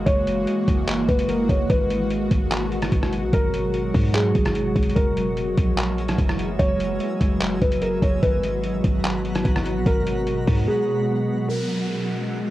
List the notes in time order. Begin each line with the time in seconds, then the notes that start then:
Already playing: E3 G#3 A#3 F#4
0.06 F#1 C#5, kick, closed hi-hat
0.27 closed hi-hat
0.47 closed hi-hat
0.68 F#1, kick, closed hi-hat
0.88 clap, closed hi-hat
1.09 F#1 B4, kick, closed hi-hat
1.19 closed hi-hat
1.29 A#4, closed hi-hat
1.49 F#1 C#5, kick, closed hi-hat
1.70 G#1 B2 F#3 B4, kick, closed hi-hat
1.90 closed hi-hat
2.10 closed hi-hat
2.31 G#1, kick, closed hi-hat
2.51 clap, closed hi-hat
2.72 closed hi-hat
2.82 cross-stick, closed hi-hat
2.92 G#1, kick, closed hi-hat
3.03 cross-stick
3.13 closed hi-hat
3.23 B1
3.33 G#1 A#4, kick, closed hi-hat
3.54 closed hi-hat
3.74 closed hi-hat
3.94 G#2, kick, open hi-hat
4.14 G#4, clap, closed hi-hat
4.35 G#1, kick, closed hi-hat
4.45 cross-stick, closed hi-hat
4.55 closed hi-hat
4.76 G#1, kick, closed hi-hat
4.83 closed hi-hat
4.90 closed hi-hat
4.95 F#1 E3 A#3 G#4 A#4 E5, kick, closed hi-hat
5.17 closed hi-hat
5.37 closed hi-hat
5.58 A#1, kick, closed hi-hat
5.78 clap, closed hi-hat
5.98 closed hi-hat
6.08 cross-stick, closed hi-hat
6.18 F#1, kick, closed hi-hat
6.29 cross-stick
6.39 closed hi-hat
6.59 F#1 C#5, kick, closed hi-hat
6.80 closed hi-hat
7.00 closed hi-hat
7.21 F#1, kick, closed hi-hat
7.41 clap, closed hi-hat
7.62 F#1 B4, kick, closed hi-hat
7.72 closed hi-hat
7.82 A#4, closed hi-hat
8.02 F#1 C#5, kick, closed hi-hat
8.23 G#1 B2 G#3 B3 F#4 B4 F#5 A#5, kick, closed hi-hat
8.43 closed hi-hat
8.64 closed hi-hat
8.84 G#1, kick, closed hi-hat
9.05 clap, closed hi-hat
9.25 closed hi-hat
9.35 cross-stick, closed hi-hat
9.45 G#1, kick, closed hi-hat
9.56 cross-stick
9.66 closed hi-hat
9.76 B1
9.86 G#1 A#4, kick, closed hi-hat
10.07 closed hi-hat
10.27 closed hi-hat
10.47 G#2, kick, open hi-hat
10.68 G#4
11.48 E3 G#3 A#3 C#4 F#4 G#4 A#4 E5 F#5, downlifter